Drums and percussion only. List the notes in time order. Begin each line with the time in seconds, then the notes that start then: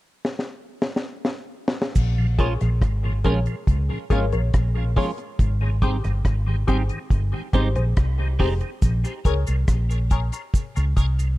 0.25 snare
0.39 snare
0.82 snare
0.96 snare
1.25 snare
1.68 snare
1.82 snare
1.96 kick, crash, cabasa
2.39 kick, closed hi-hat
2.61 cross-stick, closed hi-hat
2.82 kick, cross-stick, closed hi-hat
3.24 kick, closed hi-hat
3.46 closed hi-hat
3.67 kick, closed hi-hat
4.10 kick, closed hi-hat
4.32 closed hi-hat
4.54 kick, cross-stick, closed hi-hat
4.96 kick, open hi-hat
5.18 closed hi-hat
5.39 kick, closed hi-hat
5.82 kick, closed hi-hat
6.04 cross-stick, closed hi-hat
6.25 kick, cross-stick, closed hi-hat
6.68 kick, closed hi-hat
6.89 closed hi-hat
7.10 kick, closed hi-hat
7.53 kick, closed hi-hat
7.76 closed hi-hat
7.97 kick, cross-stick, closed hi-hat
8.39 kick, open hi-hat
8.61 closed hi-hat
8.82 kick, closed hi-hat, cabasa
9.05 cabasa
9.25 kick, closed hi-hat, cabasa
9.47 closed hi-hat, cabasa
9.68 kick, cross-stick, closed hi-hat, cabasa
9.91 cabasa
10.11 kick, closed hi-hat, cabasa
10.32 closed hi-hat, cabasa
10.54 kick, closed hi-hat, cabasa
10.76 cabasa
10.97 kick, closed hi-hat, cabasa
11.19 closed hi-hat, cabasa